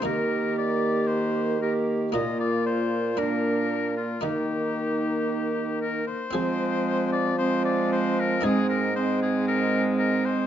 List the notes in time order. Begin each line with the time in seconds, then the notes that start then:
0.02 D#3 A#3 D#4 G4 A#4
0.58 D5
1.07 C5
1.60 A#3 G4 A#4
2.12 A#2 A#3 D#4 F4 D#5
2.40 D5
2.66 C5
3.17 A#3 D4 A#4
3.96 F4
4.21 D#3 A#3 D#4 G4
5.81 A#4
6.07 C5
6.31 F3 G#3 C4 F4 G#4
7.12 D5
7.37 G#3 C4 C5
7.65 D5
7.92 C5
8.19 A#4
8.41 G#2 G#3 C4 D4 D#4 G#4
8.46 C4
8.69 A#4
8.95 G#3 C4 C5
9.22 G#4
9.47 A#4
9.99 A#4
10.25 C5